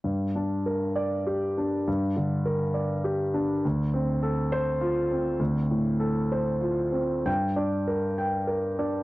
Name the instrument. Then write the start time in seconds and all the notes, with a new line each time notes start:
grand piano
0.04 G2
0.36 D4
0.66 A#4
0.96 D5
1.27 G4
1.58 D4
1.88 G2
2.16 D3
2.46 A#4
2.74 D5
3.04 G4
3.34 D4
3.65 D2
3.94 C4
4.23 A4
4.52 C5
4.81 F4
5.11 C4
5.39 D2
5.71 A2
6.00 A4
6.32 C5
6.61 F4
6.92 C4
7.26 G2 G5
7.56 D4 D5
7.88 A#4
8.18 G5
8.47 A#4
8.79 D4 D5